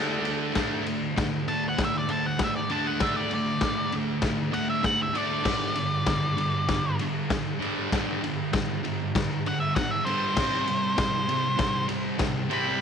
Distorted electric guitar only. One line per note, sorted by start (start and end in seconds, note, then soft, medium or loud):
0.00 0.52 D3 medium
0.00 0.55 A3 medium
0.00 0.55 D4 loud
0.54 0.83 D3 medium
0.54 0.83 A3 medium
0.54 0.85 D4 medium
0.84 1.13 D3 medium
0.84 1.13 A3 medium
1.16 1.44 D3 medium
1.16 1.44 A3 medium
1.48 1.75 D3 medium
1.48 1.76 A3 medium
1.78 2.06 D3 medium
1.78 2.06 A3 medium
2.09 2.37 D3 medium
2.09 2.37 A3 medium
2.40 2.68 D3 medium
2.40 2.68 A3 medium
2.70 2.99 D3 medium
2.70 2.99 A3 medium
2.70 3.00 D4 loud
3.01 3.30 D3 medium
3.01 3.30 A3 medium
3.01 3.30 D4 medium
3.33 3.60 D3 medium
3.33 3.60 A3 medium
3.64 3.91 D3 medium
3.64 3.91 A3 medium
3.93 4.21 D3 medium
3.93 4.21 A3 medium
4.24 4.50 D3 medium
4.24 4.51 A3 medium
4.51 4.80 D3 medium
4.51 4.81 A3 medium
4.82 5.11 D3 medium
4.82 5.12 A3 medium
5.13 5.43 D3 medium
5.13 5.43 A3 loud
5.13 5.44 D4 loud
5.43 5.73 G2 medium
5.43 5.74 D3 medium
5.43 5.74 G3 medium
5.76 6.04 G2 medium
5.76 6.04 D3 medium
6.07 6.35 G2 medium
6.07 6.35 D3 medium
6.37 6.65 G2 medium
6.37 6.65 D3 medium
6.70 6.97 G2 medium
6.70 6.97 D3 medium
7.01 7.28 G2 medium
7.01 7.28 D3 medium
7.31 7.58 G2 medium
7.31 7.58 D3 medium
7.59 7.89 G2 medium
7.59 7.90 D3 loud
7.59 7.90 G3 loud
7.91 8.20 G2 medium
7.91 8.20 D3 loud
7.91 8.21 G3 medium
8.23 8.50 G2 medium
8.23 8.50 D3 medium
8.53 8.81 G2 medium
8.53 8.81 D3 medium
8.83 9.11 G2 medium
8.83 9.11 D3 medium
9.15 9.42 G2 medium
9.15 9.42 D3 medium
9.46 9.73 G2 medium
9.46 9.73 D3 medium
9.77 10.04 G2 medium
9.77 10.04 D3 medium
10.06 10.35 G2 medium
10.06 10.36 D3 medium
10.06 10.36 G3 loud
10.37 10.66 C3 medium
10.37 10.66 G3 medium
10.37 10.67 C4 loud
10.67 10.95 C3 medium
10.67 10.95 G3 medium
10.97 11.25 C3 medium
10.97 11.26 G3 medium
11.29 11.56 C3 medium
11.29 11.57 G3 medium
11.57 11.86 C3 medium
11.57 11.86 G3 medium
11.88 12.17 C3 medium
11.88 12.17 G3 medium
12.18 12.47 C3 medium
12.18 12.47 G3 medium
12.49 12.79 C3 medium
12.49 12.80 G3 loud
12.49 12.80 C4 loud